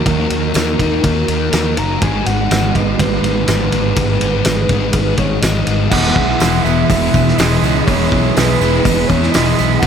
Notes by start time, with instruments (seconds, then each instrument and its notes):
Already playing: analog synth pad D#3 F#4, overdriven electric guitar D#3 F#3 A#3 D#4
0.05 fingered electric bass D#2, distorted electric guitar D#3 A#3 D#4, analog synth pad D#4, soft synth lead A#4, kick, ride
0.30 fingered electric bass D#2, distorted electric guitar A#3 D#4, ride
0.54 fingered electric bass D#2, distorted electric guitar D#3 A#3 D#4, snare, ride, tambourine
0.79 fingered electric bass D#2, distorted electric guitar A#3 D#4, kick, ride
1.03 fingered electric bass D#2, distorted electric guitar D#3 A#3 D#4, kick, ride
1.27 fingered electric bass D#2, distorted electric guitar A#3 D#4, ride
1.52 fingered electric bass D#2, distorted electric guitar D#3 A#3 D#4, snare, ride, tambourine
1.77 fingered electric bass F#1, distorted electric guitar A#3 D#4, soft synth lead A#5, ride
2.01 fingered electric bass G#1, distorted electric guitar G#2 D#3 G#3, overdriven electric guitar G#2 D#3 G#3 B3 D#4, analog synth pad G#3 B4, soft synth lead G#5, kick, ride
2.26 fingered electric bass G#1, distorted electric guitar D#3 G#3, soft synth lead F#5, ride
2.50 fingered electric bass G#1, distorted electric guitar G#2 D#3 G#3, snare, ride, tambourine
2.74 fingered electric bass G#1, distorted electric guitar D#3 G#3, soft synth lead D#5, kick, ride
2.99 fingered electric bass G#1, distorted electric guitar G#2 D#3 G#3, soft synth lead B4, kick, ride
3.23 fingered electric bass G#1, distorted electric guitar D#3 G#3, ride
3.46 fingered electric bass G#1, distorted electric guitar G#2 D#3 G#3, snare, ride, tambourine
3.72 fingered electric bass G#1, distorted electric guitar D#3 G#3, ride
3.95 fingered electric bass G#1, distorted electric guitar G#2 D#3 G#3, analog synth pad G#4, kick, ride
4.20 fingered electric bass G#1, distorted electric guitar D#3 G#3, ride
4.45 fingered electric bass G#1, distorted electric guitar G#2 D#3 G#3, snare, ride, tambourine
4.69 fingered electric bass G#1, distorted electric guitar D#3 G#3, kick, ride
4.93 fingered electric bass G#1, distorted electric guitar G#2 D#3 G#3, kick, ride
5.17 fingered electric bass G#1, distorted electric guitar D#3 G#3, soft synth lead C#5, kick, ride
5.41 fingered electric bass G#1, distorted electric guitar G#2 D#3 G#3, soft synth lead D#5, snare, ride, tambourine
5.67 fingered electric bass G#1, distorted electric guitar D#3 G#3, ride
5.90 fingered electric bass E1, distorted electric guitar E2 B2 E3, overdriven electric guitar E3 G#3 B3, analog synth pad E3 G#4, soft synth lead F#5, kick, crash
5.94 overdriven electric guitar E4
6.16 fingered electric bass B1, kick
6.40 fingered electric bass E1, distorted electric guitar E2 B2 E3, overdriven electric guitar E3 G#3 B3 E4, snare, open hi-hat, tambourine
6.63 fingered electric bass E1, distorted electric guitar B2 E3, overdriven electric guitar G#3 B3 E4, soft synth lead E5, tambourine
6.90 fingered electric bass E1, distorted electric guitar E2 B2 E3, kick, open hi-hat, tambourine
7.14 fingered electric bass E1, kick, tambourine
7.28 snare
7.37 fingered electric bass E1, distorted electric guitar E2 B2 E3, overdriven electric guitar E3 G#3 B3 E4, soft synth lead D#5, snare, open hi-hat, tambourine
7.63 fingered electric bass C#2, distorted electric guitar B2 E3, overdriven electric guitar G#3 B3 E4, tambourine
7.86 fingered electric bass E1, distorted electric guitar E2 B2 E3, overdriven electric guitar E3 G#3 B3 E4, soft synth lead C#5, kick, open hi-hat, tambourine
8.12 fingered electric bass B1, kick
8.36 fingered electric bass B1, distorted electric guitar E2 B2 E3, overdriven electric guitar E3 G#3 B3, soft synth lead B4, snare, open hi-hat, tambourine
8.40 overdriven electric guitar E4
8.60 fingered electric bass E1, distorted electric guitar B2 E3, overdriven electric guitar G#3 B3 E4, tambourine
8.85 fingered electric bass E1, distorted electric guitar E2 B2 E3, kick, open hi-hat, tambourine
9.07 fingered electric bass E2, soft synth lead C#5, kick, tambourine
9.23 snare
9.31 distorted electric guitar E2, overdriven electric guitar E3, soft synth lead D#5, open hi-hat, tambourine
9.35 fingered electric bass E1, distorted electric guitar B2 E3, overdriven electric guitar G#3 B3 E4, snare
9.58 fingered electric bass B1, distorted electric guitar B2 E3, overdriven electric guitar G#3 B3 E4, tambourine
9.79 fingered electric bass C2, distorted electric guitar C3, overdriven electric guitar C3, analog synth pad C4 E4 B4, soft synth lead F#5, kick, tambourine, crash
9.83 distorted electric guitar G3